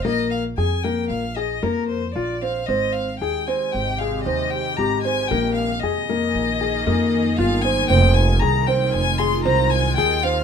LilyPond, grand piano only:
\new Staff \with { instrumentName = "Grand piano" } { \time 5/4 \key bes \dorian \tempo 4 = 115 bes4 aes'8 bes4 aes'8 bes4 f'8 c'8 | c'4 aes'8 c'4 aes'8 c'4 g'8 c'8 | bes4 aes'8 bes4 aes'8 bes4 f'8 c'8 | c'4 aes'8 c'4 aes'8 c'4 aes'8 c'8 | }